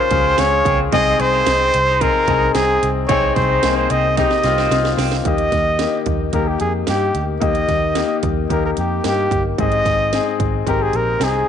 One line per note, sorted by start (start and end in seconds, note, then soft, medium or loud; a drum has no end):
0.00 0.95 C#3 medium
0.00 0.11 C#4 loud
0.00 0.94 D#4 medium
0.00 0.12 F4 loud
0.00 0.13 G#4 loud
0.00 0.95 A#4 medium
0.00 0.41 C5 loud
0.11 0.34 C#2 loud
0.11 0.34 C#4 medium
0.11 0.35 F4 medium
0.11 0.35 G#4 medium
0.11 kick medium
0.11 closed hi-hat medium
0.25 0.38 C4 medium
0.37 0.61 C#2 loud
0.37 0.84 C#4 medium
0.37 0.84 F4 medium
0.37 0.85 G#4 medium
0.37 0.80 C#5 loud
0.37 snare loud
0.37 closed hi-hat medium
0.65 0.88 C#2 loud
0.65 0.79 C4 medium
0.65 kick loud
0.65 closed hi-hat medium
0.92 1.15 C2 medium
0.92 1.70 C3 medium
0.92 1.18 G#3 loud
0.92 1.38 C4 medium
0.92 1.39 D#4 loud
0.92 1.39 G#4 loud
0.92 1.21 D#5 loud
0.92 kick loud
0.92 closed hi-hat medium
1.19 1.42 C2 loud
1.19 2.03 C5 loud
1.19 snare soft
1.19 closed hi-hat medium
1.33 1.46 A#3 medium
1.47 1.69 C2 loud
1.47 1.92 C4 medium
1.47 1.93 D#4 medium
1.47 1.93 G#4 medium
1.47 snare loud
1.47 closed hi-hat medium
1.61 1.73 C4 medium
1.74 2.08 C2 medium
1.74 closed hi-hat medium
1.88 2.00 D#4 medium
2.01 2.24 C4 medium
2.01 2.24 D#4 medium
2.01 2.27 F4 medium
2.01 2.25 G#4 medium
2.01 2.54 A#4 loud
2.01 kick medium
2.01 closed hi-hat medium
2.28 2.50 C2 loud
2.28 2.51 C4 medium
2.28 2.41 D#4 medium
2.28 2.51 D#4 medium
2.28 2.52 G#4 medium
2.28 kick medium
2.28 closed hi-hat medium
2.54 2.77 C2 loud
2.54 3.01 C4 medium
2.54 3.01 D#4 medium
2.54 2.92 G#4 medium
2.54 3.01 G#4 medium
2.54 snare loud
2.54 closed hi-hat medium
2.83 3.05 C2 loud
2.83 closed hi-hat medium
3.08 3.31 C2 medium
3.08 3.87 C3 medium
3.08 3.55 C4 medium
3.08 3.22 C4 loud
3.08 3.55 D#4 medium
3.08 3.56 G#4 medium
3.08 3.36 C#5 medium
3.08 kick loud
3.08 closed hi-hat medium
3.35 3.58 C2 medium
3.35 3.76 C5 medium
3.35 kick medium
3.35 snare soft
3.35 closed hi-hat medium
3.50 3.63 D#4 medium
3.63 3.86 C2 loud
3.63 3.70 A#3 medium
3.63 3.89 A#3 medium
3.63 4.09 D#4 medium
3.63 4.10 G#4 medium
3.63 snare loud
3.63 closed hi-hat medium
3.70 4.12 C4 medium
3.77 3.92 C5 medium
3.90 4.24 C2 medium
3.90 4.03 C4 medium
3.90 4.17 D#5 medium
3.90 closed hi-hat medium
4.17 4.40 C4 medium
4.17 4.30 D#4 medium
4.17 4.40 D#4 medium
4.17 4.41 G4 medium
4.17 4.95 D#5 medium
4.17 kick medium
4.17 snare medium
4.17 closed hi-hat medium
4.31 snare medium
4.43 4.67 C2 medium
4.43 4.67 C4 medium
4.43 4.68 D#4 medium
4.43 4.68 F4 medium
4.43 snare medium
4.43 closed hi-hat medium
4.58 4.71 C4 medium
4.58 snare medium
4.71 4.93 C2 loud
4.71 5.17 C4 medium
4.71 5.17 D#4 medium
4.71 5.18 F4 medium
4.71 snare medium
4.71 closed hi-hat medium
4.85 snare medium
4.98 5.20 C2 loud
4.98 5.11 C4 medium
4.98 snare loud
4.98 open hi-hat medium
5.12 snare medium
5.25 5.48 D#2 medium
5.25 6.03 D#3 medium
5.25 5.71 A#3 medium
5.25 5.72 D#4 medium
5.25 5.72 G4 medium
5.25 6.03 D#5 medium
5.25 kick loud
5.25 closed hi-hat medium
5.38 closed hi-hat soft
5.52 5.86 D#2 medium
5.52 kick medium
5.52 snare soft
5.52 closed hi-hat medium
5.79 6.25 A#3 medium
5.79 6.25 D#4 medium
5.79 6.26 G4 medium
5.79 snare medium
5.79 closed hi-hat medium
6.06 6.29 D#2 medium
6.06 kick medium
6.06 closed hi-hat medium
6.33 6.56 D#2 medium
6.33 6.79 A#3 medium
6.33 6.79 D#4 medium
6.33 6.80 G4 medium
6.33 6.49 A#4 medium
6.33 kick medium
6.33 closed hi-hat medium
6.48 6.60 G4 medium
6.60 6.83 F2 medium
6.60 6.73 G#4 medium
6.60 closed hi-hat medium
6.87 7.10 G2 medium
6.87 7.33 A#3 medium
6.87 7.33 D#4 medium
6.87 7.34 G4 medium
6.87 7.26 G4 medium
6.87 snare loud
6.87 closed hi-hat medium
7.15 7.37 D2 medium
7.15 closed hi-hat medium
7.40 7.64 D#2 medium
7.40 8.19 D#3 medium
7.40 7.87 A#3 medium
7.40 7.87 D#4 medium
7.40 7.87 G4 medium
7.40 8.19 D#5 medium
7.40 kick loud
7.40 closed hi-hat medium
7.55 closed hi-hat soft
7.68 8.02 D#2 medium
7.68 kick medium
7.68 snare soft
7.68 closed hi-hat medium
7.95 8.41 A#3 medium
7.95 8.42 D#4 medium
7.95 8.42 G4 medium
7.95 snare medium
7.95 closed hi-hat medium
8.23 8.45 D#2 medium
8.23 kick medium
8.23 closed hi-hat medium
8.49 8.72 D#2 medium
8.49 8.95 A#3 medium
8.49 8.96 D#4 medium
8.49 8.96 G4 medium
8.49 8.63 A#4 medium
8.49 kick medium
8.49 closed hi-hat medium
8.65 8.71 A#4 medium
8.77 9.00 F2 medium
8.77 9.03 G4 medium
8.77 closed hi-hat medium
9.04 9.27 G2 medium
9.04 9.50 A#3 medium
9.04 9.50 D#4 medium
9.04 9.51 G4 medium
9.04 9.44 G4 medium
9.04 snare loud
9.04 closed hi-hat medium
9.31 9.53 G1 medium
9.31 kick medium
9.31 closed hi-hat medium
9.58 9.81 G#1 medium
9.58 10.36 G#2 medium
9.58 10.04 C4 medium
9.58 10.04 D#4 medium
9.58 10.05 G#4 medium
9.58 10.37 D#5 medium
9.58 kick loud
9.58 closed hi-hat medium
9.72 closed hi-hat soft
9.85 10.19 G#1 medium
9.85 kick medium
9.85 snare soft
9.85 closed hi-hat medium
10.13 10.58 C4 medium
10.13 10.59 D#4 medium
10.13 10.59 G#4 medium
10.13 snare medium
10.13 closed hi-hat medium
10.40 10.62 G#1 medium
10.40 kick medium
10.40 closed hi-hat medium
10.66 10.89 G#1 medium
10.66 11.12 C4 medium
10.66 11.12 D#4 medium
10.66 11.13 G4 medium
10.66 10.84 A#4 medium
10.66 kick medium
10.66 closed hi-hat medium
10.82 10.97 G#4 medium
10.93 11.16 A#1 medium
10.93 11.25 A#4 medium
10.93 closed hi-hat medium
11.19 11.42 C2 medium
11.19 11.48 C4 medium
11.19 11.48 D#4 medium
11.19 11.48 G#4 medium
11.19 snare medium
11.19 closed hi-hat medium
11.24 11.48 G#4 medium